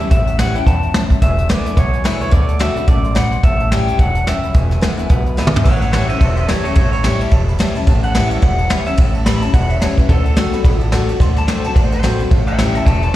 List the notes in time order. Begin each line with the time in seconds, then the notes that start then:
0.00 C#4 E4 A5
0.10 A1 A2 C#5 E5 G5, kick, closed hi-hat
0.26 C#5 E5 F#5, closed hi-hat
0.39 E3 G3 C#4 E4 F#5, snare, closed hi-hat
0.54 C#4 E4 C#5 E5 G5 A5, muted upright bass stroke, closed hi-hat
0.66 E2 G2 C#5 E5 A5 B5, kick, closed hi-hat
0.82 C#5 E5 G5, closed hi-hat
0.94 F#2 C#5 E5 A5, snare, closed hi-hat
1.09 C#5 E5 A5, muted upright bass stroke, kick, closed hi-hat
1.21 E1 E2 B4 E5 G#5, kick, closed hi-hat
1.37 B4 E5 G#5, closed hi-hat
1.49 D3 G#3 B3 E4 B4 D5 G#5, snare, closed hi-hat
1.65 B3 E4 B4 E5 G#5, muted upright bass stroke, snare, closed hi-hat
1.77 B1 B2 B4 C#5 E5 F#5, kick, snare, closed hi-hat
1.92 B4 E5 G#5, closed hi-hat
2.04 D3 G#3 B3 E4 B4 E5 G#5, snare, closed hi-hat
2.20 B4 C#5 E5 B5, muted upright bass stroke, closed hi-hat
2.31 D2 D3 D5 F#5 A5, kick, closed hi-hat
2.47 D5 F#5 A5, closed hi-hat
2.59 D3 A3 C4 F#4 D5 E5 F#5 A5, snare, closed hi-hat
2.75 C4 F#4 D5 F#5 B5, muted upright bass stroke, closed hi-hat
2.86 A1 F#2 D5 F#5 A5, kick, closed hi-hat
3.02 D5 F#5 C6, closed hi-hat
3.14 B2 D5 F#5 B5, snare, closed hi-hat
3.30 D5 F#5 C6, muted upright bass stroke, closed hi-hat
3.43 A1 A2 C#5 E5 A5, kick, closed hi-hat
3.59 C#5 E5 A5, closed hi-hat
3.71 E3 G3 C#4 E4 C#5 A5, snare, closed hi-hat
3.87 C#5 E5 A5, muted upright bass stroke, closed hi-hat
3.99 E1 G2 C#5 E5 F#5 A5, kick, closed hi-hat
4.15 C#5 E5 A5, closed hi-hat
4.26 F#2 C#5 E5 G5, snare, closed hi-hat
4.42 C#5 E5 B5, muted upright bass stroke, closed hi-hat
4.53 E1 E2 B4 E5 G#5, kick, closed hi-hat
4.70 B4 E5 G#5, snare, closed hi-hat
4.81 D3 G#3 B3 E4 B4 E5 F#5, snare, closed hi-hat
4.98 B3 E4 B4 E5 G#5, muted upright bass stroke, snare, closed hi-hat
5.09 B1 B2 B4 E5 F#5, kick, closed hi-hat
5.25 B4 E5 B5, closed hi-hat
5.36 D3 G#3 B3 E4 B4 E5 F#5 B5, snare
5.47 mid tom
5.53 B3 E4 B4 E5 G#5, muted upright bass stroke, floor tom
5.64 A1 A2 C#5 E5 F#5 A5, kick, crash
5.80 C#5 F#5, snare, ride
5.91 E3 G3 C#4 E4 C#5 E5 F#5 A5, snare, ride
6.08 C#4 E4 C5 E5 F#5, muted upright bass stroke, ride
6.19 E1 E2 C5 C#5 E5 A5, kick, ride
6.36 C5 C#5 E5 F#5, ride
6.47 E3 G3 C#4 E4 A4 C#5 E5 A5, snare, ride
6.63 E4 A4 C#5 E5 G5, muted upright bass stroke, ride
6.67 C#4
6.75 A1 A2 A4 C#5 E5 A5, kick, ride
6.92 C#5 E5 B5, ride
7.03 E3 G3 C#4 E4 C#5 E5 G5, snare, ride
7.19 C#5 E5 A5, muted upright bass stroke, ride
7.31 E1 E2 C#5 E5 A5, kick, ride
7.47 C#5 E5 B5, ride
7.59 E3 G3 C#4 E4 C#5 E5 A5, snare, ride
7.75 C#4 E4 C#5 E5 A5, muted upright bass stroke, ride
7.86 A1 A2 C#5 E5 A5, kick, ride
8.03 C#5 E5 F#5 A5, ride
8.14 E3 G3 C#4 E4 C#5 E5 A5, snare, ride
8.31 C#5 E5 A5, muted upright bass stroke, ride
8.42 E1 E2 C#5 E5 F#5, kick, ride
8.57 C#5 E5 A5, ride
8.69 E3 G3 C#4 E4 C#5 E5 B5, snare, ride
8.85 C#4 E4 C#5 E5 A5, muted upright bass stroke, ride
8.97 A1 A2 C#5 E5 G5, kick, ride
9.13 C#5 E5 A5, ride
9.26 E3 G3 C#4 E4 A5 B5, snare, ride
9.41 C#4 E4 C#5 E5 A5, muted upright bass stroke, ride
9.52 E1 E2 C#5 E5 F#5, kick, ride
9.69 C#5 E5 F#5, ride
9.80 E3 G3 C#4 E4 C#5 E5 A5, snare, ride
9.96 C#4 E4 B4 C#5 E5 F#5, muted upright bass stroke, kick, ride
10.08 D2 D3 A4 D5 F#5 A5, kick, ride
10.23 A4 D5 F#5 A5, ride
10.35 D3 A3 C4 F#4 D5 A5, snare, ride
10.51 C4 F#4 D5 F#5 B5, muted upright bass stroke, snare, ride
10.63 A1 A2 D5 F#5 B5, kick, ride
10.79 D5 F#5 A5, ride
10.91 D3 A3 C4 F#4 D5 F#5 A5, snare, ride
11.08 C4 F#4 D5 F#5 A5, muted upright bass stroke, ride
11.19 D2 D3 D5 F#5 C6, kick, ride
11.35 D5 F#5 A5 B5, snare, ride
11.47 D3 A3 C4 F#4 D5 F#5 C6, snare, ride
11.56 C5
11.62 F#4 D5 F#5 A5, muted upright bass stroke, ride
11.67 C4
11.75 A1 A2 D5 F#5 A5, kick, ride
11.85 C5
11.91 C5 D5 F#5 A5, ride
12.02 D3 A3 C4 F#4 D5 F#5 A5, snare, ride
12.18 C4 F#4 D5 F#5 B5, muted upright bass stroke, ride
12.30 A1 A2 C#5 E5 A5, kick, ride
12.47 C#5 E5 G5 A5, ride
12.58 E3 G3 C#4 E4 C#5 E5 G5, snare, ride
12.74 C#4 E4 C#5 E5 A5 B5, muted upright bass stroke, snare, ride
12.85 E1 E2 C#5 E5 A5, kick, ride
13.01 C#5 E5 A5 B5, ride